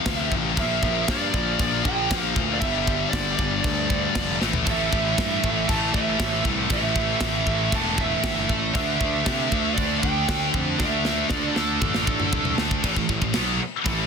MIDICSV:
0, 0, Header, 1, 7, 480
1, 0, Start_track
1, 0, Tempo, 510638
1, 541, Time_signature, 4, 2, 24, 8
1, 13222, End_track
2, 0, Start_track
2, 0, Title_t, "Lead electric guitar"
2, 0, Program_c, 0, 29
2, 0, Note_on_c, 0, 77, 108
2, 165, Note_off_c, 0, 77, 0
2, 165, Note_on_c, 0, 76, 108
2, 275, Note_off_c, 0, 76, 0
2, 557, Note_on_c, 0, 76, 102
2, 996, Note_off_c, 0, 76, 0
2, 1034, Note_on_c, 0, 74, 93
2, 1474, Note_off_c, 0, 74, 0
2, 1509, Note_on_c, 0, 74, 94
2, 1721, Note_on_c, 0, 79, 115
2, 1752, Note_off_c, 0, 74, 0
2, 2176, Note_off_c, 0, 79, 0
2, 2377, Note_on_c, 0, 74, 94
2, 2434, Note_off_c, 0, 74, 0
2, 2438, Note_on_c, 0, 76, 110
2, 2894, Note_off_c, 0, 76, 0
2, 2910, Note_on_c, 0, 74, 91
2, 3142, Note_off_c, 0, 74, 0
2, 3153, Note_on_c, 0, 74, 96
2, 4089, Note_off_c, 0, 74, 0
2, 4421, Note_on_c, 0, 76, 89
2, 5323, Note_off_c, 0, 76, 0
2, 5348, Note_on_c, 0, 81, 105
2, 5568, Note_off_c, 0, 81, 0
2, 5580, Note_on_c, 0, 76, 84
2, 6027, Note_off_c, 0, 76, 0
2, 6321, Note_on_c, 0, 76, 98
2, 7287, Note_on_c, 0, 81, 110
2, 7299, Note_off_c, 0, 76, 0
2, 7498, Note_off_c, 0, 81, 0
2, 7527, Note_on_c, 0, 76, 100
2, 7961, Note_off_c, 0, 76, 0
2, 8220, Note_on_c, 0, 76, 98
2, 9151, Note_off_c, 0, 76, 0
2, 9155, Note_on_c, 0, 74, 98
2, 9395, Note_on_c, 0, 79, 110
2, 9416, Note_off_c, 0, 74, 0
2, 9854, Note_off_c, 0, 79, 0
2, 10144, Note_on_c, 0, 76, 120
2, 10642, Note_off_c, 0, 76, 0
2, 10642, Note_on_c, 0, 74, 120
2, 10826, Note_off_c, 0, 74, 0
2, 10862, Note_on_c, 0, 69, 95
2, 11785, Note_off_c, 0, 69, 0
2, 13222, End_track
3, 0, Start_track
3, 0, Title_t, "Distorted electric guitar"
3, 0, Program_c, 1, 30
3, 49, Note_on_c, 1, 41, 83
3, 62, Note_on_c, 1, 48, 89
3, 74, Note_on_c, 1, 53, 94
3, 521, Note_off_c, 1, 41, 0
3, 527, Note_off_c, 1, 48, 0
3, 533, Note_off_c, 1, 53, 0
3, 534, Note_on_c, 1, 46, 92
3, 544, Note_on_c, 1, 53, 81
3, 557, Note_on_c, 1, 58, 98
3, 1712, Note_off_c, 1, 58, 0
3, 1723, Note_off_c, 1, 46, 0
3, 1723, Note_on_c, 1, 58, 96
3, 1727, Note_off_c, 1, 53, 0
3, 1745, Note_on_c, 1, 53, 84
3, 1750, Note_on_c, 1, 46, 83
3, 1957, Note_off_c, 1, 58, 0
3, 1958, Note_off_c, 1, 46, 0
3, 1968, Note_off_c, 1, 53, 0
3, 1969, Note_on_c, 1, 46, 84
3, 1988, Note_on_c, 1, 53, 97
3, 1999, Note_on_c, 1, 58, 96
3, 2440, Note_off_c, 1, 46, 0
3, 2446, Note_on_c, 1, 43, 88
3, 2450, Note_off_c, 1, 53, 0
3, 2455, Note_off_c, 1, 58, 0
3, 2466, Note_on_c, 1, 50, 86
3, 2477, Note_on_c, 1, 55, 94
3, 3639, Note_off_c, 1, 43, 0
3, 3649, Note_off_c, 1, 50, 0
3, 3649, Note_off_c, 1, 55, 0
3, 3660, Note_on_c, 1, 55, 82
3, 3673, Note_on_c, 1, 50, 82
3, 3683, Note_on_c, 1, 43, 77
3, 3882, Note_off_c, 1, 43, 0
3, 3886, Note_off_c, 1, 55, 0
3, 3892, Note_off_c, 1, 50, 0
3, 3893, Note_on_c, 1, 43, 85
3, 3907, Note_on_c, 1, 50, 89
3, 3922, Note_on_c, 1, 55, 86
3, 4122, Note_off_c, 1, 43, 0
3, 4128, Note_off_c, 1, 50, 0
3, 4132, Note_on_c, 1, 45, 92
3, 4137, Note_off_c, 1, 55, 0
3, 4144, Note_on_c, 1, 52, 98
3, 4153, Note_on_c, 1, 57, 109
3, 5333, Note_off_c, 1, 45, 0
3, 5337, Note_on_c, 1, 45, 82
3, 5343, Note_off_c, 1, 52, 0
3, 5347, Note_on_c, 1, 52, 85
3, 5357, Note_off_c, 1, 57, 0
3, 5361, Note_on_c, 1, 57, 93
3, 5564, Note_off_c, 1, 45, 0
3, 5569, Note_off_c, 1, 52, 0
3, 5571, Note_off_c, 1, 57, 0
3, 5575, Note_on_c, 1, 57, 91
3, 5597, Note_on_c, 1, 52, 86
3, 5604, Note_on_c, 1, 45, 70
3, 6039, Note_off_c, 1, 45, 0
3, 6049, Note_off_c, 1, 52, 0
3, 6050, Note_on_c, 1, 45, 93
3, 6060, Note_on_c, 1, 52, 99
3, 6066, Note_off_c, 1, 57, 0
3, 6070, Note_on_c, 1, 57, 108
3, 7227, Note_off_c, 1, 45, 0
3, 7238, Note_on_c, 1, 45, 82
3, 7242, Note_off_c, 1, 52, 0
3, 7253, Note_on_c, 1, 52, 85
3, 7258, Note_off_c, 1, 57, 0
3, 7262, Note_on_c, 1, 57, 85
3, 7475, Note_off_c, 1, 45, 0
3, 7475, Note_off_c, 1, 57, 0
3, 7479, Note_on_c, 1, 57, 93
3, 7482, Note_off_c, 1, 52, 0
3, 7496, Note_on_c, 1, 52, 74
3, 7503, Note_on_c, 1, 45, 67
3, 7964, Note_off_c, 1, 52, 0
3, 7968, Note_off_c, 1, 45, 0
3, 8206, Note_on_c, 1, 50, 89
3, 8220, Note_off_c, 1, 57, 0
3, 8220, Note_on_c, 1, 57, 102
3, 8226, Note_on_c, 1, 62, 100
3, 9400, Note_off_c, 1, 50, 0
3, 9409, Note_off_c, 1, 62, 0
3, 9423, Note_on_c, 1, 62, 89
3, 9438, Note_off_c, 1, 57, 0
3, 9442, Note_on_c, 1, 57, 80
3, 9448, Note_on_c, 1, 50, 76
3, 9648, Note_off_c, 1, 62, 0
3, 9650, Note_off_c, 1, 50, 0
3, 9661, Note_on_c, 1, 50, 84
3, 9673, Note_off_c, 1, 57, 0
3, 9677, Note_on_c, 1, 57, 88
3, 9686, Note_on_c, 1, 62, 108
3, 10120, Note_off_c, 1, 50, 0
3, 10131, Note_on_c, 1, 50, 85
3, 10134, Note_off_c, 1, 57, 0
3, 10138, Note_on_c, 1, 57, 87
3, 10140, Note_off_c, 1, 62, 0
3, 10154, Note_on_c, 1, 62, 90
3, 11320, Note_off_c, 1, 62, 0
3, 11323, Note_off_c, 1, 50, 0
3, 11326, Note_off_c, 1, 57, 0
3, 11331, Note_on_c, 1, 62, 92
3, 11337, Note_on_c, 1, 57, 80
3, 11353, Note_on_c, 1, 50, 77
3, 11563, Note_off_c, 1, 62, 0
3, 11565, Note_off_c, 1, 57, 0
3, 11573, Note_off_c, 1, 50, 0
3, 11583, Note_on_c, 1, 50, 76
3, 11595, Note_on_c, 1, 57, 93
3, 11612, Note_on_c, 1, 62, 93
3, 12049, Note_off_c, 1, 50, 0
3, 12055, Note_off_c, 1, 57, 0
3, 12063, Note_off_c, 1, 62, 0
3, 13222, End_track
4, 0, Start_track
4, 0, Title_t, "Distorted electric guitar"
4, 0, Program_c, 2, 30
4, 4372, Note_on_c, 2, 45, 97
4, 4395, Note_on_c, 2, 52, 88
4, 4412, Note_on_c, 2, 57, 96
4, 5323, Note_off_c, 2, 45, 0
4, 5326, Note_on_c, 2, 45, 71
4, 5345, Note_off_c, 2, 52, 0
4, 5349, Note_on_c, 2, 52, 77
4, 5360, Note_off_c, 2, 57, 0
4, 5364, Note_on_c, 2, 57, 86
4, 6279, Note_off_c, 2, 45, 0
4, 6290, Note_off_c, 2, 52, 0
4, 6292, Note_on_c, 2, 45, 88
4, 6309, Note_on_c, 2, 52, 101
4, 6321, Note_off_c, 2, 57, 0
4, 6325, Note_on_c, 2, 57, 110
4, 7242, Note_off_c, 2, 45, 0
4, 7251, Note_off_c, 2, 52, 0
4, 7253, Note_on_c, 2, 45, 79
4, 7269, Note_on_c, 2, 52, 83
4, 7282, Note_off_c, 2, 57, 0
4, 7286, Note_on_c, 2, 57, 89
4, 8203, Note_off_c, 2, 45, 0
4, 8207, Note_on_c, 2, 50, 83
4, 8211, Note_off_c, 2, 52, 0
4, 8228, Note_off_c, 2, 57, 0
4, 8228, Note_on_c, 2, 57, 105
4, 8249, Note_on_c, 2, 62, 100
4, 9171, Note_off_c, 2, 50, 0
4, 9174, Note_on_c, 2, 50, 80
4, 9194, Note_off_c, 2, 57, 0
4, 9197, Note_on_c, 2, 57, 87
4, 9206, Note_off_c, 2, 62, 0
4, 9210, Note_on_c, 2, 62, 96
4, 10124, Note_off_c, 2, 50, 0
4, 10138, Note_on_c, 2, 50, 86
4, 10141, Note_off_c, 2, 62, 0
4, 10157, Note_off_c, 2, 57, 0
4, 10161, Note_on_c, 2, 57, 88
4, 10177, Note_on_c, 2, 62, 110
4, 11083, Note_off_c, 2, 50, 0
4, 11095, Note_on_c, 2, 50, 78
4, 11097, Note_off_c, 2, 57, 0
4, 11105, Note_off_c, 2, 62, 0
4, 11115, Note_on_c, 2, 57, 84
4, 11131, Note_on_c, 2, 62, 88
4, 12045, Note_off_c, 2, 50, 0
4, 12055, Note_off_c, 2, 57, 0
4, 12060, Note_on_c, 2, 45, 94
4, 12063, Note_off_c, 2, 62, 0
4, 12067, Note_on_c, 2, 52, 107
4, 12174, Note_off_c, 2, 45, 0
4, 12178, Note_off_c, 2, 52, 0
4, 12185, Note_on_c, 2, 45, 68
4, 12190, Note_on_c, 2, 52, 79
4, 12298, Note_off_c, 2, 45, 0
4, 12301, Note_off_c, 2, 52, 0
4, 12309, Note_on_c, 2, 45, 66
4, 12313, Note_on_c, 2, 52, 72
4, 12416, Note_off_c, 2, 45, 0
4, 12423, Note_off_c, 2, 52, 0
4, 12427, Note_on_c, 2, 45, 71
4, 12434, Note_on_c, 2, 52, 83
4, 12545, Note_off_c, 2, 45, 0
4, 12549, Note_off_c, 2, 52, 0
4, 12549, Note_on_c, 2, 47, 93
4, 12556, Note_on_c, 2, 54, 95
4, 12563, Note_on_c, 2, 59, 101
4, 12779, Note_off_c, 2, 47, 0
4, 12783, Note_off_c, 2, 54, 0
4, 12786, Note_off_c, 2, 59, 0
4, 13026, Note_on_c, 2, 45, 98
4, 13034, Note_on_c, 2, 52, 103
4, 13044, Note_on_c, 2, 57, 109
4, 13222, Note_off_c, 2, 45, 0
4, 13222, Note_off_c, 2, 52, 0
4, 13222, Note_off_c, 2, 57, 0
4, 13222, End_track
5, 0, Start_track
5, 0, Title_t, "Distorted electric guitar"
5, 0, Program_c, 3, 30
5, 0, Note_on_c, 3, 41, 96
5, 0, Note_on_c, 3, 48, 97
5, 0, Note_on_c, 3, 53, 110
5, 514, Note_off_c, 3, 48, 0
5, 519, Note_off_c, 3, 53, 0
5, 520, Note_off_c, 3, 41, 0
5, 13222, End_track
6, 0, Start_track
6, 0, Title_t, "Picked electric bass"
6, 0, Program_c, 4, 34
6, 59, Note_on_c, 4, 38, 92
6, 258, Note_off_c, 4, 38, 0
6, 302, Note_on_c, 4, 33, 91
6, 500, Note_off_c, 4, 33, 0
6, 543, Note_on_c, 4, 34, 110
6, 740, Note_off_c, 4, 34, 0
6, 777, Note_on_c, 4, 34, 98
6, 977, Note_off_c, 4, 34, 0
6, 1020, Note_on_c, 4, 43, 106
6, 1219, Note_off_c, 4, 43, 0
6, 1258, Note_on_c, 4, 34, 90
6, 1457, Note_off_c, 4, 34, 0
6, 1501, Note_on_c, 4, 34, 101
6, 1699, Note_off_c, 4, 34, 0
6, 1741, Note_on_c, 4, 34, 92
6, 1939, Note_off_c, 4, 34, 0
6, 1982, Note_on_c, 4, 34, 98
6, 2180, Note_off_c, 4, 34, 0
6, 2220, Note_on_c, 4, 38, 91
6, 2418, Note_off_c, 4, 38, 0
6, 2462, Note_on_c, 4, 31, 102
6, 2858, Note_off_c, 4, 31, 0
6, 2943, Note_on_c, 4, 31, 96
6, 3140, Note_off_c, 4, 31, 0
6, 3186, Note_on_c, 4, 31, 98
6, 3382, Note_off_c, 4, 31, 0
6, 3425, Note_on_c, 4, 38, 96
6, 3820, Note_off_c, 4, 38, 0
6, 3912, Note_on_c, 4, 29, 94
6, 4105, Note_off_c, 4, 29, 0
6, 4152, Note_on_c, 4, 33, 91
6, 4346, Note_off_c, 4, 33, 0
6, 4390, Note_on_c, 4, 33, 104
6, 4584, Note_off_c, 4, 33, 0
6, 4632, Note_on_c, 4, 33, 87
6, 4825, Note_off_c, 4, 33, 0
6, 4870, Note_on_c, 4, 43, 98
6, 5064, Note_off_c, 4, 43, 0
6, 5112, Note_on_c, 4, 33, 101
6, 5305, Note_off_c, 4, 33, 0
6, 5352, Note_on_c, 4, 33, 103
6, 5545, Note_off_c, 4, 33, 0
6, 5584, Note_on_c, 4, 33, 98
6, 5781, Note_off_c, 4, 33, 0
6, 5826, Note_on_c, 4, 33, 98
6, 6022, Note_off_c, 4, 33, 0
6, 6061, Note_on_c, 4, 36, 90
6, 6259, Note_off_c, 4, 36, 0
6, 6306, Note_on_c, 4, 33, 101
6, 6700, Note_off_c, 4, 33, 0
6, 6782, Note_on_c, 4, 33, 97
6, 6980, Note_off_c, 4, 33, 0
6, 7021, Note_on_c, 4, 33, 92
6, 7219, Note_off_c, 4, 33, 0
6, 7257, Note_on_c, 4, 28, 109
6, 7655, Note_off_c, 4, 28, 0
6, 7745, Note_on_c, 4, 31, 97
6, 7942, Note_off_c, 4, 31, 0
6, 7984, Note_on_c, 4, 33, 92
6, 8181, Note_off_c, 4, 33, 0
6, 8225, Note_on_c, 4, 38, 106
6, 8422, Note_off_c, 4, 38, 0
6, 8467, Note_on_c, 4, 38, 103
6, 8663, Note_off_c, 4, 38, 0
6, 8710, Note_on_c, 4, 48, 105
6, 8904, Note_off_c, 4, 48, 0
6, 8952, Note_on_c, 4, 38, 96
6, 9146, Note_off_c, 4, 38, 0
6, 9194, Note_on_c, 4, 38, 99
6, 9387, Note_off_c, 4, 38, 0
6, 9434, Note_on_c, 4, 38, 99
6, 9627, Note_off_c, 4, 38, 0
6, 9666, Note_on_c, 4, 38, 97
6, 9863, Note_off_c, 4, 38, 0
6, 9909, Note_on_c, 4, 41, 86
6, 10104, Note_off_c, 4, 41, 0
6, 10153, Note_on_c, 4, 38, 109
6, 10545, Note_off_c, 4, 38, 0
6, 10625, Note_on_c, 4, 38, 104
6, 10822, Note_off_c, 4, 38, 0
6, 10875, Note_on_c, 4, 38, 98
6, 11068, Note_off_c, 4, 38, 0
6, 11107, Note_on_c, 4, 33, 101
6, 11502, Note_off_c, 4, 33, 0
6, 11587, Note_on_c, 4, 36, 95
6, 11784, Note_off_c, 4, 36, 0
6, 11826, Note_on_c, 4, 38, 91
6, 12023, Note_off_c, 4, 38, 0
6, 12066, Note_on_c, 4, 33, 109
6, 12176, Note_off_c, 4, 33, 0
6, 12192, Note_on_c, 4, 33, 88
6, 12299, Note_off_c, 4, 33, 0
6, 12306, Note_on_c, 4, 33, 92
6, 12416, Note_off_c, 4, 33, 0
6, 12428, Note_on_c, 4, 33, 86
6, 12538, Note_off_c, 4, 33, 0
6, 12558, Note_on_c, 4, 35, 103
6, 12775, Note_off_c, 4, 35, 0
6, 13031, Note_on_c, 4, 33, 104
6, 13222, Note_off_c, 4, 33, 0
6, 13222, End_track
7, 0, Start_track
7, 0, Title_t, "Drums"
7, 54, Note_on_c, 9, 38, 120
7, 54, Note_on_c, 9, 49, 73
7, 56, Note_on_c, 9, 36, 121
7, 148, Note_off_c, 9, 38, 0
7, 148, Note_off_c, 9, 49, 0
7, 150, Note_off_c, 9, 36, 0
7, 297, Note_on_c, 9, 36, 88
7, 391, Note_off_c, 9, 36, 0
7, 537, Note_on_c, 9, 49, 63
7, 538, Note_on_c, 9, 36, 118
7, 631, Note_off_c, 9, 49, 0
7, 632, Note_off_c, 9, 36, 0
7, 777, Note_on_c, 9, 36, 89
7, 871, Note_off_c, 9, 36, 0
7, 1018, Note_on_c, 9, 38, 113
7, 1018, Note_on_c, 9, 49, 58
7, 1019, Note_on_c, 9, 36, 118
7, 1112, Note_off_c, 9, 38, 0
7, 1112, Note_off_c, 9, 49, 0
7, 1113, Note_off_c, 9, 36, 0
7, 1258, Note_on_c, 9, 36, 89
7, 1352, Note_off_c, 9, 36, 0
7, 1497, Note_on_c, 9, 49, 60
7, 1499, Note_on_c, 9, 36, 120
7, 1591, Note_off_c, 9, 49, 0
7, 1593, Note_off_c, 9, 36, 0
7, 1740, Note_on_c, 9, 36, 94
7, 1834, Note_off_c, 9, 36, 0
7, 1981, Note_on_c, 9, 36, 121
7, 1985, Note_on_c, 9, 38, 123
7, 1985, Note_on_c, 9, 49, 66
7, 2075, Note_off_c, 9, 36, 0
7, 2079, Note_off_c, 9, 38, 0
7, 2079, Note_off_c, 9, 49, 0
7, 2219, Note_on_c, 9, 36, 91
7, 2313, Note_off_c, 9, 36, 0
7, 2458, Note_on_c, 9, 49, 64
7, 2460, Note_on_c, 9, 36, 115
7, 2552, Note_off_c, 9, 49, 0
7, 2554, Note_off_c, 9, 36, 0
7, 2702, Note_on_c, 9, 36, 92
7, 2796, Note_off_c, 9, 36, 0
7, 2944, Note_on_c, 9, 36, 110
7, 2946, Note_on_c, 9, 38, 111
7, 2946, Note_on_c, 9, 49, 65
7, 3038, Note_off_c, 9, 36, 0
7, 3040, Note_off_c, 9, 38, 0
7, 3040, Note_off_c, 9, 49, 0
7, 3185, Note_on_c, 9, 36, 89
7, 3279, Note_off_c, 9, 36, 0
7, 3422, Note_on_c, 9, 49, 71
7, 3425, Note_on_c, 9, 36, 115
7, 3516, Note_off_c, 9, 49, 0
7, 3519, Note_off_c, 9, 36, 0
7, 3667, Note_on_c, 9, 36, 93
7, 3761, Note_off_c, 9, 36, 0
7, 3904, Note_on_c, 9, 38, 121
7, 3904, Note_on_c, 9, 49, 78
7, 3906, Note_on_c, 9, 36, 122
7, 3998, Note_off_c, 9, 38, 0
7, 3998, Note_off_c, 9, 49, 0
7, 4000, Note_off_c, 9, 36, 0
7, 4149, Note_on_c, 9, 38, 71
7, 4243, Note_off_c, 9, 38, 0
7, 4262, Note_on_c, 9, 43, 107
7, 4356, Note_off_c, 9, 43, 0
7, 4384, Note_on_c, 9, 49, 68
7, 4388, Note_on_c, 9, 36, 126
7, 4478, Note_off_c, 9, 49, 0
7, 4482, Note_off_c, 9, 36, 0
7, 4630, Note_on_c, 9, 36, 93
7, 4724, Note_off_c, 9, 36, 0
7, 4871, Note_on_c, 9, 36, 110
7, 4875, Note_on_c, 9, 38, 103
7, 4875, Note_on_c, 9, 49, 67
7, 4965, Note_off_c, 9, 36, 0
7, 4969, Note_off_c, 9, 38, 0
7, 4969, Note_off_c, 9, 49, 0
7, 5111, Note_on_c, 9, 36, 90
7, 5205, Note_off_c, 9, 36, 0
7, 5349, Note_on_c, 9, 36, 115
7, 5349, Note_on_c, 9, 49, 64
7, 5443, Note_off_c, 9, 36, 0
7, 5443, Note_off_c, 9, 49, 0
7, 5586, Note_on_c, 9, 36, 95
7, 5680, Note_off_c, 9, 36, 0
7, 5825, Note_on_c, 9, 36, 117
7, 5825, Note_on_c, 9, 38, 123
7, 5825, Note_on_c, 9, 49, 70
7, 5919, Note_off_c, 9, 36, 0
7, 5919, Note_off_c, 9, 38, 0
7, 5919, Note_off_c, 9, 49, 0
7, 6063, Note_on_c, 9, 36, 93
7, 6157, Note_off_c, 9, 36, 0
7, 6296, Note_on_c, 9, 49, 66
7, 6300, Note_on_c, 9, 36, 115
7, 6390, Note_off_c, 9, 49, 0
7, 6394, Note_off_c, 9, 36, 0
7, 6539, Note_on_c, 9, 36, 91
7, 6633, Note_off_c, 9, 36, 0
7, 6773, Note_on_c, 9, 38, 113
7, 6773, Note_on_c, 9, 49, 62
7, 6778, Note_on_c, 9, 36, 111
7, 6867, Note_off_c, 9, 38, 0
7, 6867, Note_off_c, 9, 49, 0
7, 6872, Note_off_c, 9, 36, 0
7, 7019, Note_on_c, 9, 36, 88
7, 7113, Note_off_c, 9, 36, 0
7, 7260, Note_on_c, 9, 36, 117
7, 7262, Note_on_c, 9, 49, 65
7, 7354, Note_off_c, 9, 36, 0
7, 7356, Note_off_c, 9, 49, 0
7, 7501, Note_on_c, 9, 36, 90
7, 7595, Note_off_c, 9, 36, 0
7, 7742, Note_on_c, 9, 36, 121
7, 7743, Note_on_c, 9, 38, 126
7, 7743, Note_on_c, 9, 49, 74
7, 7836, Note_off_c, 9, 36, 0
7, 7837, Note_off_c, 9, 38, 0
7, 7837, Note_off_c, 9, 49, 0
7, 7985, Note_on_c, 9, 36, 86
7, 8079, Note_off_c, 9, 36, 0
7, 8225, Note_on_c, 9, 36, 116
7, 8226, Note_on_c, 9, 49, 66
7, 8319, Note_off_c, 9, 36, 0
7, 8320, Note_off_c, 9, 49, 0
7, 8466, Note_on_c, 9, 36, 91
7, 8560, Note_off_c, 9, 36, 0
7, 8706, Note_on_c, 9, 36, 109
7, 8706, Note_on_c, 9, 38, 108
7, 8706, Note_on_c, 9, 49, 68
7, 8800, Note_off_c, 9, 36, 0
7, 8800, Note_off_c, 9, 38, 0
7, 8800, Note_off_c, 9, 49, 0
7, 8948, Note_on_c, 9, 36, 90
7, 9042, Note_off_c, 9, 36, 0
7, 9190, Note_on_c, 9, 36, 117
7, 9193, Note_on_c, 9, 49, 65
7, 9284, Note_off_c, 9, 36, 0
7, 9287, Note_off_c, 9, 49, 0
7, 9430, Note_on_c, 9, 36, 89
7, 9524, Note_off_c, 9, 36, 0
7, 9669, Note_on_c, 9, 36, 116
7, 9669, Note_on_c, 9, 38, 120
7, 9669, Note_on_c, 9, 49, 71
7, 9763, Note_off_c, 9, 36, 0
7, 9763, Note_off_c, 9, 38, 0
7, 9763, Note_off_c, 9, 49, 0
7, 9908, Note_on_c, 9, 36, 92
7, 10002, Note_off_c, 9, 36, 0
7, 10147, Note_on_c, 9, 38, 67
7, 10150, Note_on_c, 9, 36, 118
7, 10241, Note_off_c, 9, 38, 0
7, 10244, Note_off_c, 9, 36, 0
7, 10386, Note_on_c, 9, 38, 77
7, 10480, Note_off_c, 9, 38, 0
7, 10617, Note_on_c, 9, 38, 84
7, 10627, Note_on_c, 9, 36, 116
7, 10711, Note_off_c, 9, 38, 0
7, 10721, Note_off_c, 9, 36, 0
7, 10868, Note_on_c, 9, 38, 87
7, 10962, Note_off_c, 9, 38, 0
7, 11106, Note_on_c, 9, 45, 95
7, 11109, Note_on_c, 9, 36, 121
7, 11200, Note_off_c, 9, 45, 0
7, 11203, Note_off_c, 9, 36, 0
7, 11227, Note_on_c, 9, 38, 86
7, 11321, Note_off_c, 9, 38, 0
7, 11349, Note_on_c, 9, 36, 107
7, 11443, Note_off_c, 9, 36, 0
7, 11464, Note_on_c, 9, 45, 91
7, 11558, Note_off_c, 9, 45, 0
7, 11587, Note_on_c, 9, 36, 111
7, 11587, Note_on_c, 9, 43, 109
7, 11681, Note_off_c, 9, 36, 0
7, 11681, Note_off_c, 9, 43, 0
7, 11704, Note_on_c, 9, 43, 92
7, 11798, Note_off_c, 9, 43, 0
7, 11825, Note_on_c, 9, 38, 110
7, 11919, Note_off_c, 9, 38, 0
7, 11949, Note_on_c, 9, 36, 104
7, 12043, Note_off_c, 9, 36, 0
7, 12068, Note_on_c, 9, 36, 110
7, 12069, Note_on_c, 9, 49, 68
7, 12162, Note_off_c, 9, 36, 0
7, 12163, Note_off_c, 9, 49, 0
7, 12187, Note_on_c, 9, 36, 91
7, 12281, Note_off_c, 9, 36, 0
7, 12306, Note_on_c, 9, 36, 86
7, 12400, Note_off_c, 9, 36, 0
7, 12424, Note_on_c, 9, 36, 83
7, 12518, Note_off_c, 9, 36, 0
7, 12538, Note_on_c, 9, 38, 112
7, 12538, Note_on_c, 9, 49, 68
7, 12632, Note_off_c, 9, 38, 0
7, 12632, Note_off_c, 9, 49, 0
7, 13026, Note_on_c, 9, 36, 112
7, 13027, Note_on_c, 9, 49, 66
7, 13120, Note_off_c, 9, 36, 0
7, 13121, Note_off_c, 9, 49, 0
7, 13222, End_track
0, 0, End_of_file